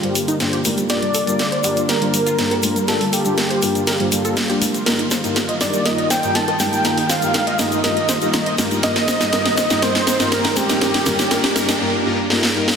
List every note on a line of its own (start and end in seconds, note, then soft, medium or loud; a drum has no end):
0.00 0.15 G2 medium
0.00 4.82 D3 medium
0.00 11.77 G3 medium
0.00 0.10 G3 medium
0.00 11.77 A#3 medium
0.00 0.15 A#3 medium
0.00 0.15 D4 medium
0.00 8.79 F4 medium
0.00 0.15 F4 medium
0.00 0.65 G4 medium
0.00 0.65 G4 loud
0.00 0.15 G4 medium
0.00 0.15 C5 medium
0.00 closed hi-hat soft
0.00 riser medium
0.15 0.22 G3 medium
0.15 open hi-hat loud
0.15 shaker medium
0.28 0.35 D#4 medium
0.28 closed hi-hat soft
0.28 shaker medium
0.40 0.59 G2 medium
0.40 0.47 G3 medium
0.40 0.59 A#3 medium
0.40 0.59 D4 medium
0.40 0.59 F4 medium
0.40 0.59 G4 medium
0.40 0.59 C5 loud
0.40 snare medium
0.40 closed hi-hat medium
0.40 shaker soft
0.53 0.60 G4 medium
0.53 closed hi-hat soft
0.65 0.77 G2 medium
0.65 0.72 G3 medium
0.65 0.77 A#3 medium
0.65 0.77 D4 medium
0.65 0.77 F4 medium
0.65 0.77 G4 medium
0.65 0.77 A#4 medium
0.65 open hi-hat loud
0.65 high conga medium
0.65 shaker medium
0.78 0.84 G3 medium
0.78 closed hi-hat soft
0.78 shaker soft
0.89 1.02 G2 medium
0.89 1.02 A#3 medium
0.89 1.02 D4 medium
0.89 1.02 F4 medium
0.89 0.97 G4 loud
0.89 1.02 G4 medium
0.89 1.02 A#4 loud
0.89 1.91 D5 loud
0.89 snare medium
0.89 closed hi-hat medium
0.89 shaker soft
1.02 1.09 G3 medium
1.02 closed hi-hat soft
1.14 1.22 A4 loud
1.14 open hi-hat loud
1.14 shaker medium
1.27 1.36 G1 medium
1.27 1.39 G2 medium
1.27 1.34 G3 medium
1.27 1.39 A#3 medium
1.27 1.39 D4 medium
1.27 1.39 F4 medium
1.27 1.39 G4 medium
1.27 1.39 A#4 medium
1.27 closed hi-hat soft
1.27 shaker medium
1.39 1.46 G3 medium
1.39 snare medium
1.39 closed hi-hat medium
1.39 high bongo medium
1.39 shaker soft
1.52 1.59 C5 medium
1.52 closed hi-hat soft
1.64 1.83 G2 medium
1.64 1.71 G3 medium
1.64 1.83 A#3 medium
1.64 1.83 D4 medium
1.64 1.83 F4 medium
1.64 1.83 G4 medium
1.64 1.83 A#4 loud
1.64 open hi-hat loud
1.64 high bongo medium
1.64 shaker loud
1.77 1.83 G3 medium
1.77 closed hi-hat soft
1.77 shaker medium
1.89 1.96 G4 loud
1.89 2.88 A#4 loud
1.89 snare medium
1.89 closed hi-hat medium
1.89 shaker soft
2.02 2.13 G2 medium
2.02 2.08 G3 medium
2.02 2.13 A#3 medium
2.02 2.13 D4 medium
2.02 2.13 F4 medium
2.02 2.13 G4 medium
2.02 2.13 C5 medium
2.02 closed hi-hat soft
2.14 2.21 G3 medium
2.14 open hi-hat loud
2.14 shaker medium
2.26 2.33 F4 medium
2.26 closed hi-hat soft
2.26 shaker medium
2.38 2.57 G2 medium
2.38 2.46 G3 medium
2.38 2.57 A#3 medium
2.38 2.57 D4 medium
2.38 2.57 F4 medium
2.38 2.57 G4 medium
2.38 2.57 C5 loud
2.38 snare medium
2.38 closed hi-hat medium
2.38 shaker soft
2.51 2.58 A4 medium
2.51 closed hi-hat soft
2.51 high bongo medium
2.63 2.75 G2 medium
2.63 2.70 G3 medium
2.63 2.75 A#3 medium
2.63 2.75 D4 medium
2.63 2.75 F4 medium
2.63 2.75 G4 medium
2.63 2.75 A#4 medium
2.63 open hi-hat loud
2.63 high conga medium
2.63 shaker loud
2.76 2.83 G3 medium
2.76 closed hi-hat soft
2.76 shaker medium
2.88 3.00 G2 medium
2.88 3.00 A#3 medium
2.88 3.00 D4 medium
2.88 3.00 F4 medium
2.88 2.95 G4 loud
2.88 3.00 G4 medium
2.88 3.11 A4 loud
2.88 3.00 A#4 loud
2.88 snare medium
2.88 closed hi-hat medium
2.88 shaker soft
3.01 3.07 G3 medium
3.01 open hi-hat medium
3.13 4.58 G4 loud
3.13 4.58 G4 medium
3.13 3.20 A4 medium
3.13 open hi-hat loud
3.13 shaker medium
3.25 3.37 G2 medium
3.25 3.32 G3 medium
3.25 3.37 A#3 medium
3.25 3.37 D4 medium
3.25 3.37 F4 medium
3.25 3.37 G4 medium
3.25 3.37 A#4 medium
3.25 closed hi-hat soft
3.25 shaker medium
3.37 3.45 G3 medium
3.37 snare medium
3.37 closed hi-hat medium
3.37 high bongo medium
3.37 shaker soft
3.50 3.57 C5 medium
3.50 closed hi-hat soft
3.62 3.81 G2 medium
3.62 3.70 G3 medium
3.62 3.81 A#3 medium
3.62 3.81 D4 medium
3.62 3.81 F4 medium
3.62 3.81 G4 medium
3.62 3.81 A#4 loud
3.62 open hi-hat loud
3.62 high bongo medium
3.62 shaker medium
3.75 3.82 G3 medium
3.75 closed hi-hat soft
3.75 shaker medium
3.87 3.94 A#4 medium
3.87 snare medium
3.87 closed hi-hat medium
3.87 shaker soft
4.00 4.10 G2 medium
4.00 4.07 G3 medium
4.00 4.10 A#3 medium
4.00 4.10 D4 medium
4.00 4.10 F4 medium
4.00 4.10 G4 medium
4.00 4.10 C5 medium
4.00 closed hi-hat soft
4.12 4.23 G2 medium
4.12 4.19 G3 medium
4.12 4.23 A#3 medium
4.12 4.23 D4 medium
4.12 4.23 F4 medium
4.12 4.23 G4 medium
4.12 4.23 A4 loud
4.12 open hi-hat loud
4.12 shaker medium
4.25 4.36 G2 medium
4.25 4.36 A#3 medium
4.25 4.36 D4 medium
4.25 4.36 F4 medium
4.25 4.36 G4 medium
4.25 4.31 A4 medium
4.25 4.36 C5 medium
4.25 closed hi-hat soft
4.25 shaker medium
4.37 4.44 G3 medium
4.37 snare medium
4.37 closed hi-hat medium
4.37 shaker soft
4.50 4.61 G2 loud
4.50 4.61 A#3 medium
4.50 4.61 D4 medium
4.50 4.61 F4 medium
4.50 4.56 G4 medium
4.50 4.61 G4 medium
4.50 4.61 A#4 loud
4.50 closed hi-hat soft
4.62 4.69 G3 medium
4.62 open hi-hat loud
4.62 high conga medium
4.62 shaker medium
4.74 4.81 G3 medium
4.74 closed hi-hat soft
4.74 shaker soft
4.86 4.98 G2 medium
4.86 11.77 D#3 medium
4.86 4.98 A#3 medium
4.86 4.98 D#4 medium
4.86 4.98 F4 medium
4.86 4.98 G4 medium
4.86 4.93 A#4 medium
4.86 4.98 A#4 medium
4.86 snare medium
4.86 closed hi-hat medium
4.86 shaker soft
4.99 5.06 D#4 medium
4.99 closed hi-hat soft
5.11 5.18 C5 medium
5.11 snare medium
5.11 open hi-hat loud
5.11 shaker medium
5.24 5.35 G2 medium
5.24 5.35 A#3 medium
5.24 5.31 D#4 medium
5.24 5.35 D#4 medium
5.24 5.35 F4 medium
5.24 5.35 G4 medium
5.24 5.35 A#4 medium
5.24 closed hi-hat soft
5.24 shaker medium
5.36 5.43 D#4 medium
5.36 snare medium
5.36 closed hi-hat medium
5.36 high bongo medium
5.36 shaker soft
5.49 5.55 D#5 medium
5.49 closed hi-hat soft
5.61 5.80 G2 medium
5.61 5.80 A#3 medium
5.61 5.68 D#4 medium
5.61 5.80 D#4 medium
5.61 5.80 F4 medium
5.61 5.80 G4 medium
5.61 5.80 A#4 loud
5.61 5.87 D5 medium
5.61 snare medium
5.61 open hi-hat loud
5.61 high bongo medium
5.61 shaker medium
5.73 5.80 D#4 medium
5.73 closed hi-hat soft
5.73 shaker medium
5.86 5.98 G2 medium
5.86 5.98 A#3 medium
5.86 5.98 D#4 medium
5.86 5.98 F4 medium
5.86 5.98 G4 medium
5.86 5.93 A#4 loud
5.86 5.98 A#4 medium
5.86 6.10 D#5 loud
5.86 snare medium
5.86 closed hi-hat medium
5.86 shaker soft
5.98 6.05 D#4 medium
5.98 closed hi-hat soft
6.10 6.17 C5 medium
6.10 6.37 G5 loud
6.10 snare medium
6.10 open hi-hat loud
6.10 shaker loud
6.23 6.34 G2 medium
6.23 6.34 A#3 medium
6.23 6.30 D#4 medium
6.23 6.34 D#4 medium
6.23 6.34 F4 medium
6.23 6.34 G4 medium
6.23 6.34 A#4 medium
6.23 closed hi-hat soft
6.23 shaker medium
6.35 6.42 D#4 medium
6.35 6.59 A5 loud
6.35 6.60 A5 loud
6.35 snare medium
6.35 closed hi-hat medium
6.35 shaker soft
6.48 6.55 D#5 medium
6.48 closed hi-hat soft
6.48 high bongo medium
6.60 6.79 G2 medium
6.60 6.79 A#3 medium
6.60 6.67 D#4 medium
6.60 6.79 D#4 medium
6.60 6.79 F4 medium
6.60 6.79 G4 medium
6.60 6.79 A#4 loud
6.60 7.11 G5 loud
6.60 snare medium
6.60 open hi-hat loud
6.60 high conga medium
6.60 shaker loud
6.73 6.79 D#4 medium
6.73 closed hi-hat soft
6.73 shaker medium
6.84 6.97 G2 medium
6.84 6.97 A#3 medium
6.84 6.97 D#4 medium
6.84 6.97 F4 medium
6.84 6.97 G4 medium
6.84 6.92 A#4 medium
6.84 6.97 A#4 medium
6.84 snare medium
6.84 closed hi-hat medium
6.84 shaker soft
6.98 7.04 D#4 medium
6.98 open hi-hat medium
7.10 7.17 C5 medium
7.10 7.61 F5 loud
7.10 snare medium
7.10 open hi-hat loud
7.10 shaker medium
7.22 7.34 G2 medium
7.22 7.34 A#3 medium
7.22 7.29 D#4 medium
7.22 7.34 D#4 medium
7.22 7.34 F4 medium
7.22 7.34 G4 medium
7.22 7.34 A#4 medium
7.22 closed hi-hat soft
7.22 shaker medium
7.34 7.41 D#4 medium
7.34 snare medium
7.34 closed hi-hat medium
7.34 high bongo medium
7.34 shaker soft
7.47 7.54 D#5 medium
7.47 closed hi-hat soft
7.59 7.78 G2 medium
7.59 7.78 A#3 medium
7.59 7.66 D#4 medium
7.59 7.78 D#4 medium
7.59 7.78 F4 medium
7.59 7.78 G4 medium
7.59 7.78 A#4 loud
7.59 8.58 D#5 loud
7.59 8.58 D#5 medium
7.59 snare medium
7.59 open hi-hat loud
7.59 high bongo medium
7.59 shaker medium
7.72 7.79 D#4 medium
7.72 closed hi-hat soft
7.72 shaker medium
7.84 7.96 G2 medium
7.84 7.96 A#3 medium
7.84 7.96 D#4 medium
7.84 7.96 F4 medium
7.84 7.96 G4 medium
7.84 7.91 A#4 loud
7.84 7.96 A#4 loud
7.84 snare medium
7.84 closed hi-hat medium
7.84 shaker soft
7.97 8.03 D#4 medium
7.97 closed hi-hat soft
8.09 8.16 C5 medium
8.09 snare medium
8.09 open hi-hat loud
8.09 shaker medium
8.21 8.33 G2 medium
8.21 8.33 A#3 medium
8.21 8.28 D#4 medium
8.21 8.33 D#4 medium
8.21 8.33 F4 medium
8.21 8.33 G4 medium
8.21 8.33 A#4 medium
8.21 closed hi-hat soft
8.21 shaker soft
8.33 8.41 D#4 medium
8.33 snare medium
8.33 closed hi-hat medium
8.33 shaker soft
8.46 8.53 D#5 medium
8.46 closed hi-hat soft
8.58 8.77 G2 medium
8.58 8.77 A#3 medium
8.58 8.65 D#4 medium
8.58 8.77 D#4 medium
8.58 8.77 F4 medium
8.58 8.77 G4 medium
8.58 8.77 A#4 loud
8.58 snare medium
8.58 open hi-hat loud
8.58 high conga medium
8.58 shaker medium
8.71 8.78 D#4 medium
8.71 closed hi-hat soft
8.71 shaker soft
8.83 8.95 G2 medium
8.83 8.95 A#3 medium
8.83 8.95 D#4 medium
8.83 11.78 D#4 medium
8.83 8.95 F4 medium
8.83 8.95 G4 medium
8.83 8.90 A#4 loud
8.83 8.95 A#4 loud
8.83 9.84 D#5 loud
8.83 snare medium
8.83 closed hi-hat medium
8.83 shaker soft
8.96 9.03 D#4 medium
8.96 snare medium
8.96 closed hi-hat soft
9.08 9.15 C5 medium
9.08 snare medium
9.08 open hi-hat loud
9.08 shaker medium
9.21 9.31 G2 medium
9.21 9.31 A#3 medium
9.21 9.27 D#4 medium
9.21 9.31 D#4 medium
9.21 9.31 F4 medium
9.21 9.31 G4 medium
9.21 9.31 A#4 medium
9.21 snare medium
9.21 closed hi-hat soft
9.21 shaker soft
9.33 9.45 G2 medium
9.33 9.45 A#3 medium
9.33 9.45 D#4 medium
9.33 9.45 F4 medium
9.33 9.45 G4 medium
9.33 9.40 A#4 loud
9.33 9.45 A#4 loud
9.33 snare medium
9.33 closed hi-hat loud
9.33 high bongo medium
9.33 shaker soft
9.46 9.52 D#4 medium
9.46 snare medium
9.46 closed hi-hat soft
9.57 9.65 C5 medium
9.57 snare loud
9.57 open hi-hat loud
9.57 high bongo medium
9.57 shaker medium
9.70 9.80 G2 medium
9.70 9.80 A#3 medium
9.70 9.80 D#4 medium
9.70 9.77 D#4 medium
9.70 9.80 F4 medium
9.70 9.80 G4 medium
9.70 9.80 A#4 medium
9.70 snare medium
9.70 closed hi-hat soft
9.70 shaker medium
9.82 9.94 G2 medium
9.82 9.94 A#3 medium
9.82 9.94 D#4 medium
9.82 9.94 F4 medium
9.82 9.94 G4 medium
9.82 9.89 A#4 loud
9.82 9.94 A#4 loud
9.82 10.33 C5 loud
9.82 10.34 C5 loud
9.82 snare medium
9.82 closed hi-hat loud
9.82 shaker soft
9.95 10.02 D#4 medium
9.95 snare medium
9.95 closed hi-hat soft
10.07 10.14 C5 medium
10.07 snare loud
10.07 open hi-hat loud
10.07 shaker medium
10.20 10.30 G2 medium
10.20 10.30 A#3 medium
10.20 10.27 D#4 medium
10.20 10.30 D#4 medium
10.20 10.30 F4 medium
10.20 10.30 G4 medium
10.20 10.30 A#4 medium
10.20 snare medium
10.20 closed hi-hat soft
10.20 shaker soft
10.32 10.44 G2 medium
10.32 10.44 A#3 medium
10.32 10.44 D#4 medium
10.32 10.44 F4 medium
10.32 10.44 G4 medium
10.32 10.39 A#4 loud
10.32 10.58 A#4 loud
10.32 10.44 A#4 loud
10.32 10.58 A#4 loud
10.32 snare loud
10.32 closed hi-hat medium
10.32 shaker soft
10.44 10.51 D#4 medium
10.44 snare medium
10.44 closed hi-hat soft
10.44 high bongo medium
10.56 11.81 G4 loud
10.56 11.81 G4 medium
10.56 10.64 C5 medium
10.56 snare loud
10.56 open hi-hat loud
10.56 high conga medium
10.56 shaker medium
10.69 10.80 G2 medium
10.69 10.80 A#3 medium
10.69 10.76 D#4 medium
10.69 10.80 D#4 medium
10.69 10.80 F4 medium
10.69 10.80 G4 medium
10.69 10.80 A#4 medium
10.69 snare medium
10.69 closed hi-hat soft
10.69 shaker soft
10.81 10.93 G2 medium
10.81 10.93 A#3 medium
10.81 10.93 D#4 medium
10.81 10.93 F4 medium
10.81 10.93 G4 medium
10.81 10.93 A#4 loud
10.81 10.89 A#4 loud
10.81 snare loud
10.81 closed hi-hat loud
10.81 shaker soft
10.94 11.01 D#4 medium
10.94 snare medium
10.94 open hi-hat medium
11.06 11.18 G2 medium
11.06 11.18 A#3 medium
11.06 11.18 D#4 medium
11.06 11.18 F4 medium
11.06 11.18 G4 medium
11.06 11.18 A#4 loud
11.06 11.13 A#4 loud
11.06 snare loud
11.06 open hi-hat loud
11.06 low conga medium
11.06 shaker medium
11.19 11.26 D#4 medium
11.19 snare medium
11.19 closed hi-hat soft
11.19 shaker medium
11.31 11.43 G2 medium
11.31 11.43 A#3 medium
11.31 11.43 D#4 medium
11.31 11.43 F4 medium
11.31 11.43 G4 medium
11.31 11.38 A#4 loud
11.31 11.43 A#4 loud
11.31 snare loud
11.31 closed hi-hat loud
11.31 high bongo medium
11.31 shaker soft
11.44 11.51 D#4 medium
11.44 snare medium
11.44 closed hi-hat soft
11.56 11.68 G2 medium
11.56 11.68 A#3 medium
11.56 11.68 D#4 medium
11.56 11.68 F4 medium
11.56 11.68 G4 medium
11.56 11.63 A#4 loud
11.56 11.68 A#4 medium
11.56 snare loud
11.56 open hi-hat loud
11.56 high bongo medium
11.56 shaker medium
11.69 11.75 D#4 medium
11.69 snare medium
11.69 closed hi-hat soft
11.69 shaker medium
11.81 11.93 G2 medium
11.81 11.93 A#3 medium
11.81 11.93 D#4 medium
11.81 11.93 F4 medium
11.81 11.93 G4 medium
11.81 11.93 A#4 loud
12.05 12.17 G2 medium
12.05 12.17 A#3 medium
12.05 12.17 D#4 medium
12.05 12.17 F4 medium
12.05 12.17 G4 medium
12.05 12.17 A#4 loud
12.30 12.42 G2 medium
12.30 12.42 A#3 medium
12.30 12.42 D#4 medium
12.30 12.42 F4 medium
12.30 12.42 G4 medium
12.30 12.42 A#4 loud
12.30 snare medium
12.43 snare medium
12.55 12.67 G2 medium
12.55 12.67 A#3 medium
12.55 12.67 D#4 medium
12.55 12.67 F4 medium
12.55 12.67 G4 medium
12.55 12.67 A#4 loud
12.68 snare medium